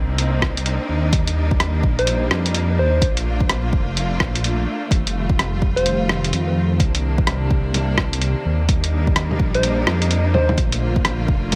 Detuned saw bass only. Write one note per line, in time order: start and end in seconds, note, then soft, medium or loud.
0.00 0.79 C2 medium
0.89 1.83 D#2 medium
1.83 2.30 A#1 medium
2.31 2.79 F2 medium
2.78 3.01 D#2 medium
3.01 3.72 A#1 medium
3.73 4.22 F1 medium
4.20 4.66 A#1 medium
4.91 6.33 F1 loud
6.33 6.79 F2 medium
6.80 8.35 C2 loud
8.45 9.39 D#2 medium
9.39 9.86 A#1 medium
9.87 10.35 F2 medium
10.34 10.56 D#2 loud
10.57 11.28 A#1 loud
11.28 11.55 F1 loud